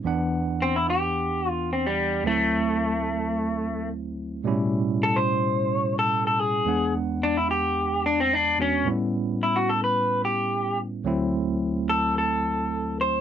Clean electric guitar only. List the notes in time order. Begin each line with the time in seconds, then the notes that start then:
0.62 C4
0.76 E4
0.90 G4
1.49 F4
1.73 C4
1.86 G3
2.27 A3
5.03 A4
5.16 C5
5.99 A4
6.27 A4
6.39 G#4
7.23 D4
7.37 E4
7.51 G4
8.06 D4
8.20 C4
8.33 D4
8.62 C#4
9.43 E4
9.56 F#4
9.69 A4
9.84 B4
10.25 G4
11.89 A4
12.18 A4
13.01 C5